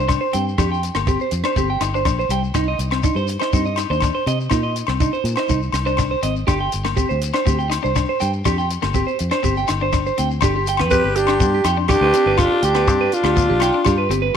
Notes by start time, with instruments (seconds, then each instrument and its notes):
Already playing: fingered electric bass C2
0.08 clean electric guitar D4, kick, cross-stick, low agogo, shekere
0.21 clean electric guitar C5
0.33 fingered electric bass G2, clean electric guitar C4 G5, closed hi-hat, shekere
0.48 shekere
0.58 fingered electric bass F2, clean electric guitar D4 G4, kick, cross-stick, low agogo, shekere
0.72 clean electric guitar G5, shekere
0.83 closed hi-hat, shekere
0.95 fingered electric bass G1, clean electric guitar A#3, cross-stick, low agogo, shekere
1.07 clean electric guitar C4 G4, kick, shekere
1.20 clean electric guitar C5, shekere
1.31 fingered electric bass F2, closed hi-hat, shekere
1.44 clean electric guitar D4 C5, cross-stick, low agogo, shekere
1.56 fingered electric bass G1, clean electric guitar C4 G4, kick, shekere
1.70 clean electric guitar G5
1.81 fingered electric bass G1, clean electric guitar D#4, cross-stick, closed hi-hat, low agogo, shekere
1.94 clean electric guitar D4 C5, shekere
2.05 fingered electric bass A#1, clean electric guitar D4, kick, cross-stick, low agogo, shekere
2.19 clean electric guitar C5, shekere
2.29 fingered electric bass C2, clean electric guitar G3 G5, closed hi-hat, shekere
2.44 shekere
2.54 fingered electric bass C2, clean electric guitar D#4, kick, cross-stick, low agogo, shekere
2.68 clean electric guitar D#5
2.79 fingered electric bass C2, closed hi-hat, shekere
2.91 clean electric guitar C4, cross-stick, low agogo
3.03 clean electric guitar D4 D#4, kick, shekere
3.15 fingered electric bass G2, clean electric guitar C5, shekere
3.28 closed hi-hat, shekere
3.40 clean electric guitar D#4 C5, cross-stick, low agogo, shekere
3.53 fingered electric bass G2, clean electric guitar C4 D#4, kick, shekere
3.65 clean electric guitar D#5, shekere
3.76 clean electric guitar D#4, cross-stick, closed hi-hat, low agogo, shekere
3.90 fingered electric bass D#2, clean electric guitar D4 C5, shekere
4.00 clean electric guitar D4, kick, cross-stick, low agogo, shekere
4.15 clean electric guitar C5
4.26 fingered electric bass C3, clean electric guitar C4 D#5, closed hi-hat, shekere
4.40 shekere
4.50 fingered electric bass A#2, clean electric guitar D#4, kick, cross-stick, low agogo, shekere
4.63 clean electric guitar D#5
4.76 closed hi-hat, shekere
4.87 fingered electric bass C2, clean electric guitar C4, cross-stick, low agogo
5.00 clean electric guitar D4 D#4, kick, shekere
5.13 clean electric guitar C5, shekere
5.24 fingered electric bass A#2, closed hi-hat, shekere
5.36 clean electric guitar D#4 C5, cross-stick, low agogo, shekere
5.49 fingered electric bass C2, clean electric guitar D#4, muted clean electric guitar stroke, kick, shekere
5.62 shekere
5.72 fingered electric bass C2, cross-stick, closed hi-hat, low agogo, shekere
5.86 clean electric guitar D4 C5, shekere
5.97 clean electric guitar D4, kick, cross-stick, low agogo, shekere
6.11 clean electric guitar C5
6.23 fingered electric bass G#1, clean electric guitar C4 D#5, closed hi-hat, shekere
6.36 shekere
6.47 fingered electric bass G1, clean electric guitar D4 G4, kick, cross-stick, low agogo, shekere
6.60 clean electric guitar G5
6.72 fingered electric bass G1, closed hi-hat, shekere
6.84 clean electric guitar A#3, cross-stick, low agogo
6.96 clean electric guitar C4 G4, kick, shekere
7.09 fingered electric bass D2, clean electric guitar C5, shekere
7.22 closed hi-hat, shekere
7.34 clean electric guitar D4 C5, cross-stick, low agogo, shekere
7.46 fingered electric bass D2, clean electric guitar C4 G4, kick, shekere
7.59 clean electric guitar G5, shekere
7.70 clean electric guitar D#4, cross-stick, closed hi-hat, low agogo, shekere
7.83 fingered electric bass C2, clean electric guitar D4 C5, shekere
7.96 clean electric guitar D4, kick, cross-stick, low agogo, shekere
8.09 clean electric guitar C5
8.20 fingered electric bass G2, clean electric guitar G5, muted clean electric guitar stroke, closed hi-hat, shekere
8.33 shekere
8.45 fingered electric bass F2, clean electric guitar D4 G4, kick, cross-stick, low agogo, shekere
8.58 clean electric guitar G5, shekere
8.70 closed hi-hat, shekere
8.82 fingered electric bass G1, clean electric guitar A#3, cross-stick, low agogo, shekere
8.94 clean electric guitar C4 G4, kick, shekere
9.07 clean electric guitar C5, shekere
9.19 fingered electric bass F2, closed hi-hat, shekere
9.31 clean electric guitar D4 C5, cross-stick, low agogo, shekere
9.43 fingered electric bass G1, clean electric guitar C4 G4, kick, shekere
9.57 clean electric guitar G5, shekere
9.68 fingered electric bass G1, clean electric guitar D#4, cross-stick, closed hi-hat, low agogo, shekere
9.81 clean electric guitar D4 C5
9.93 clean electric guitar D4, kick, cross-stick, low agogo, shekere
10.06 clean electric guitar C5, shekere
10.18 fingered electric bass D2, clean electric guitar C4 G5, closed hi-hat, shekere
10.31 shekere
10.41 fingered electric bass G1, clean electric guitar D4 G4, kick, cross-stick, low agogo, shekere
10.56 clean electric guitar G4
10.67 clean electric guitar G5, closed hi-hat, shekere
10.77 fingered electric bass F2, clean electric guitar B3 B4, cross-stick, low agogo
10.91 clean electric guitar C4 G4, trumpet G4, alto saxophone B4, kick, shekere
11.04 fingered electric bass G1, clean electric guitar B4
11.16 trumpet D4, clean electric guitar G4, alto saxophone G4, closed hi-hat, shekere
11.27 clean electric guitar D4 G4, cross-stick, low agogo
11.40 fingered electric bass G2, clean electric guitar B3, kick, shekere
11.54 clean electric guitar G4
11.64 fingered electric bass F2, clean electric guitar D#4 G5, cross-stick, closed hi-hat, low agogo, shekere
11.77 clean electric guitar D4
11.88 clean electric guitar D4 G4, trumpet D4, alto saxophone G4, kick, cross-stick, low agogo, shekere
12.01 fingered electric bass D2, clean electric guitar B4
12.14 clean electric guitar C4 G4, closed hi-hat, shekere
12.26 fingered electric bass G1, clean electric guitar B4
12.38 trumpet D4, alto saxophone F4, clean electric guitar G4, muted clean electric guitar stroke, kick, cross-stick, low agogo, shekere
12.51 clean electric guitar G4
12.63 fingered electric bass D2, trumpet D4, alto saxophone G4, clean electric guitar G5, closed hi-hat, shekere
12.75 clean electric guitar B3 B4, cross-stick, low agogo
12.88 fingered electric bass G2, clean electric guitar C4, kick, shekere
13.01 clean electric guitar B4
13.12 trumpet D4, alto saxophone F4, muted clean electric guitar stroke, closed hi-hat, shekere
13.24 fingered electric bass D2, clean electric guitar D4 G4, cross-stick, low agogo
13.36 clean electric guitar B3, kick, shekere
13.49 fingered electric bass B1, clean electric guitar G4
13.60 clean electric guitar D#4 G5, cross-stick, closed hi-hat, low agogo, shekere
13.74 clean electric guitar D4
13.85 fingered electric bass G2, clean electric guitar D4 G4, kick, cross-stick, low agogo, shekere
13.98 clean electric guitar B4
14.09 fingered electric bass G1, clean electric guitar C4 G4, closed hi-hat, shekere
14.22 clean electric guitar B4